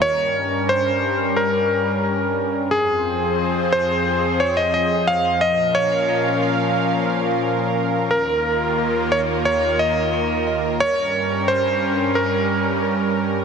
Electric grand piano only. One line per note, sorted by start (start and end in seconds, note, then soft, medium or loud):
0.02 0.72 C#5 loud
0.69 1.39 C5 loud
1.36 2.34 A#4 medium
2.71 3.76 G#4 medium
3.72 4.43 C5 loud
4.40 4.58 C#5 loud
4.57 4.72 D#5 loud
4.74 5.06 D#5 loud
5.07 5.43 F5 loud
5.41 5.76 D#5 loud
5.75 6.39 C#5 loud
8.11 9.15 A#4 medium
9.12 9.19 C#5 loud
9.45 9.77 C#5 loud
9.79 10.43 D#5 loud
10.80 11.51 C#5 loud
11.48 12.18 C5 loud
12.15 13.13 A#4 medium